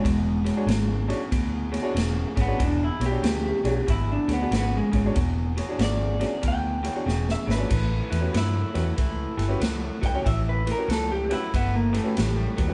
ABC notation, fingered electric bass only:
X:1
M:4/4
L:1/8
Q:"Swing" 1/4=94
K:Emix
V:1 name="Fingered electric bass" clef=bass
E,,,2 G,,,2 D,,2 E,,, G,,, | E,,, B,,, D,, B,,, G,,, D,, G,,, G,,, | E,,,2 G,,,2 D,,2 E,,, G,,, | A,,, E,, =G,, E,, C,, =G,,, C,, C,, |
A,,,2 C,,2 =G,,,2 A,,, ^D,, |]